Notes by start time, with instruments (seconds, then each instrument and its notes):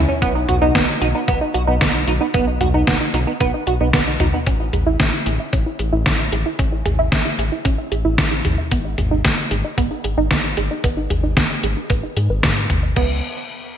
0.08 clean electric guitar C#4, synth arpeggio sound C#4
0.22 analog synth bass B1, clean electric guitar B3, synth arpeggio sound B3, kick, closed hi-hat
0.35 synth arpeggio sound D#4
0.48 analog synth bass B1, clean electric guitar F#4, synth arpeggio sound F#4, closed hi-hat, mid tom
0.62 clean electric guitar B3, synth arpeggio sound D#4
0.75 analog synth bass B1, synth arpeggio sound B3, clean electric guitar B3, kick, snare, closed hi-hat
0.89 synth arpeggio sound D#4
1.02 analog synth bass B1, clean electric guitar D#4, synth arpeggio sound F#4, closed hi-hat
1.15 clean electric guitar B3, synth arpeggio sound D#4
1.28 analog synth bass B1, synth arpeggio sound B3, clean electric guitar B3, kick, closed hi-hat
1.41 synth arpeggio sound D#4
1.54 analog synth bass B1, synth arpeggio sound F#4, clean electric guitar F#4, closed hi-hat
1.67 analog synth bass B1, clean electric guitar B3, synth arpeggio sound D#4
1.81 analog synth bass B1, synth arpeggio sound B3, clean electric guitar B3, kick, snare, closed hi-hat
1.94 synth arpeggio sound D#4
2.07 analog synth bass B1, clean electric guitar D#4, synth arpeggio sound F#4, closed hi-hat
2.21 clean electric guitar B3, synth arpeggio sound D#4
2.34 analog synth bass B1, synth arpeggio sound B3, clean electric guitar B3, kick, closed hi-hat
2.47 synth arpeggio sound D#4
2.61 analog synth bass B1, synth arpeggio sound F#4, clean electric guitar F#4, closed hi-hat, mid tom
2.74 clean electric guitar B3, synth arpeggio sound D#4
2.87 analog synth bass B1, synth arpeggio sound B3, clean electric guitar B3, kick, snare, closed hi-hat
3.01 synth arpeggio sound D#4
3.14 analog synth bass B1, clean electric guitar D#4, synth arpeggio sound F#4, closed hi-hat
3.27 clean electric guitar B3, synth arpeggio sound D#4
3.40 analog synth bass B1, clean electric guitar B3, synth arpeggio sound B3, kick, closed hi-hat
3.54 synth arpeggio sound D#4
3.67 analog synth bass B1, clean electric guitar F#4, synth arpeggio sound F#4, closed hi-hat
3.81 analog synth bass B1, clean electric guitar B3, synth arpeggio sound D#4
3.93 analog synth bass B1, clean electric guitar B3, synth arpeggio sound B3, kick, snare, closed hi-hat
4.07 synth arpeggio sound D#4
4.20 analog synth bass B1, clean electric guitar D#4, synth arpeggio sound F#4, closed hi-hat, mid tom
4.33 clean electric guitar B3, synth arpeggio sound D#4
4.47 analog synth bass A1, synth arpeggio sound C#4, kick, closed hi-hat
4.60 synth arpeggio sound E4
4.73 analog synth bass A1, synth arpeggio sound G#4, closed hi-hat, mid tom
4.87 synth arpeggio sound E4
5.00 analog synth bass A1, synth arpeggio sound C#4, kick, snare, closed hi-hat
5.13 synth arpeggio sound E4
5.26 analog synth bass A1, synth arpeggio sound G#4, closed hi-hat
5.40 synth arpeggio sound E4
5.53 analog synth bass A1, synth arpeggio sound C#4, kick, closed hi-hat
5.66 synth arpeggio sound E4
5.79 analog synth bass A1, synth arpeggio sound G#4, closed hi-hat
5.93 analog synth bass A1, synth arpeggio sound E4
6.06 analog synth bass A1, synth arpeggio sound C#4, kick, snare, closed hi-hat
6.19 synth arpeggio sound E4
6.32 analog synth bass A1, synth arpeggio sound G#4, closed hi-hat
6.46 synth arpeggio sound E4
6.59 analog synth bass A1, synth arpeggio sound C#4, kick, closed hi-hat
6.72 synth arpeggio sound E4
6.85 analog synth bass A1, synth arpeggio sound G#4, closed hi-hat, mid tom
6.99 synth arpeggio sound E4
7.12 analog synth bass A1, synth arpeggio sound C#4, kick, snare, closed hi-hat
7.25 synth arpeggio sound E4
7.38 analog synth bass A1, synth arpeggio sound G#4, closed hi-hat
7.52 synth arpeggio sound E4
7.65 analog synth bass A1, synth arpeggio sound C#4, kick, closed hi-hat
7.78 synth arpeggio sound E4
7.92 analog synth bass A1, synth arpeggio sound G#4, closed hi-hat
8.05 analog synth bass A1, synth arpeggio sound E4
8.18 analog synth bass A1, synth arpeggio sound C#4, kick, snare, closed hi-hat
8.31 synth arpeggio sound E4
8.45 analog synth bass A1, synth arpeggio sound G#4, closed hi-hat, mid tom
8.58 synth arpeggio sound E4
8.71 analog synth bass G#1, synth arpeggio sound B3, kick, closed hi-hat
8.85 synth arpeggio sound D#4
8.98 analog synth bass G#1, synth arpeggio sound G#4, closed hi-hat, mid tom
9.11 synth arpeggio sound D#4
9.25 analog synth bass G#1, synth arpeggio sound B3, kick, snare, closed hi-hat
9.38 synth arpeggio sound D#4
9.51 analog synth bass G#1, synth arpeggio sound G#4, closed hi-hat
9.65 synth arpeggio sound D#4
9.78 analog synth bass G#1, synth arpeggio sound B3, kick, closed hi-hat
9.91 synth arpeggio sound D#4
10.04 analog synth bass G#1, synth arpeggio sound G#4, closed hi-hat
10.18 analog synth bass G#1, synth arpeggio sound D#4
10.31 analog synth bass G#1, synth arpeggio sound B3, kick, snare, closed hi-hat
10.44 synth arpeggio sound D#4
10.57 analog synth bass G#1, synth arpeggio sound G#4, closed hi-hat
10.71 synth arpeggio sound D#4
10.84 analog synth bass G#1, synth arpeggio sound B3, kick, closed hi-hat
10.97 synth arpeggio sound D#4
11.10 analog synth bass G#1, synth arpeggio sound G#4, closed hi-hat, mid tom
11.24 synth arpeggio sound D#4
11.37 analog synth bass G#1, synth arpeggio sound B3, kick, snare, closed hi-hat
11.50 synth arpeggio sound D#4
11.63 analog synth bass G#1, synth arpeggio sound G#4, closed hi-hat
11.77 synth arpeggio sound D#4
11.90 analog synth bass G#1, synth arpeggio sound B3, kick, closed hi-hat
12.03 synth arpeggio sound D#4
12.17 analog synth bass G#2, synth arpeggio sound G#4, closed hi-hat
12.30 analog synth bass G#1, synth arpeggio sound B4
12.43 analog synth bass G#2, synth arpeggio sound B3, kick, snare, closed hi-hat
12.57 synth arpeggio sound G#4
12.70 analog synth bass G#1, synth arpeggio sound B5, closed hi-hat, mid tom
12.83 synth arpeggio sound D#5
12.96 analog synth bass C#2, synth arpeggio sound B3, kick, crash